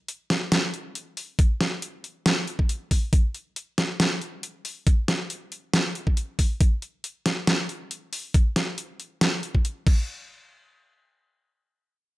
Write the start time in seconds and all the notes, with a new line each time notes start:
0.08 closed hi-hat
0.30 snare, closed hi-hat
0.52 snare, closed hi-hat
0.74 closed hi-hat
0.95 closed hi-hat
1.17 open hi-hat
1.39 kick, closed hi-hat
1.61 snare, closed hi-hat
1.82 closed hi-hat
2.04 closed hi-hat
2.26 snare, closed hi-hat
2.48 closed hi-hat
2.59 kick
2.69 closed hi-hat
2.91 kick, open hi-hat
3.13 kick, closed hi-hat
3.35 closed hi-hat
3.56 closed hi-hat
3.78 snare, closed hi-hat
4.00 snare, closed hi-hat
4.21 closed hi-hat
4.43 closed hi-hat
4.65 open hi-hat
4.87 kick, closed hi-hat
5.08 snare, closed hi-hat
5.30 closed hi-hat
5.52 closed hi-hat
5.74 snare, closed hi-hat
5.95 closed hi-hat
6.07 kick
6.17 closed hi-hat
6.39 kick, open hi-hat
6.61 kick, closed hi-hat
6.82 closed hi-hat
7.04 closed hi-hat
7.26 snare, closed hi-hat
7.47 snare, closed hi-hat
7.69 closed hi-hat
7.91 closed hi-hat
8.13 open hi-hat
8.34 kick, closed hi-hat
8.56 snare, closed hi-hat
8.78 closed hi-hat
9.00 closed hi-hat
9.21 snare, closed hi-hat
9.43 closed hi-hat
9.55 kick
9.65 closed hi-hat
9.87 kick, crash